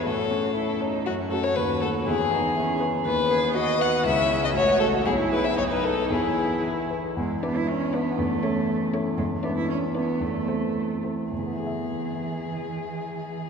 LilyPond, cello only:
\new Staff \with { instrumentName = "Cello" } { \time 2/4 \key e \major \tempo 4 = 119 fis'4 e'8 dis'8 | cis'4 fis'4 | e'8 dis'8 cis'4 | b8 gis'8 fis'4 |
e'4 fis'4 | e'4 dis'4 | e'4. r8 | gis8 b16 e'16 cis'8 b8 |
a4. r8 | gis8 b16 e'16 cis'8 b8 | a4. r8 | e2~ |
e2 | }